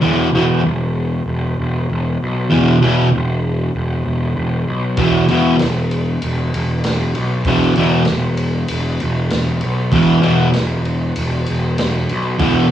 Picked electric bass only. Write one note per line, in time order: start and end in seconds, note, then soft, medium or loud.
0.04 0.31 E1 medium
0.33 0.61 E1 medium
0.65 1.20 E1 medium
1.26 1.54 E1 medium
1.58 1.86 E1 medium
1.90 2.17 E1 medium
2.23 2.49 B1 medium
2.53 2.80 E1 medium
2.83 3.10 E1 medium
3.14 3.69 E1 medium
3.75 4.02 E1 medium
4.05 4.33 E1 medium
4.36 4.64 E1 medium
4.67 4.95 B1 medium
4.97 5.25 E1 medium
5.30 5.58 E1 medium
5.61 6.16 E1 medium
6.22 6.50 E1 medium
6.54 6.81 E1 medium
6.85 7.12 E1 medium
7.15 7.43 B1 medium
7.45 7.73 E1 medium
7.77 8.04 E1 medium
8.09 8.63 E1 medium
8.70 8.97 E1 medium
9.02 9.29 E1 loud
9.32 9.59 E1 medium
9.63 9.90 B1 medium
9.92 10.20 E1 medium
10.25 10.52 E1 medium
10.56 11.11 E1 medium
11.17 11.44 E1 medium
11.48 11.76 E1 loud
11.79 12.06 E1 medium
12.11 12.38 B1 medium
12.39 12.67 E1 medium